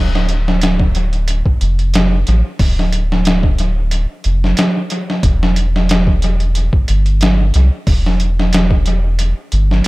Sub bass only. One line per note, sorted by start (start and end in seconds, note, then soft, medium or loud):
0.00 1.42 D1 medium
1.62 2.24 F1 loud
2.28 2.43 A1 medium
2.60 4.06 D1 loud
4.25 4.54 F1 medium
5.24 6.70 E1 medium
6.89 7.52 G1 loud
7.55 7.70 C2 medium
7.87 9.33 E1 medium
9.53 9.82 G1 medium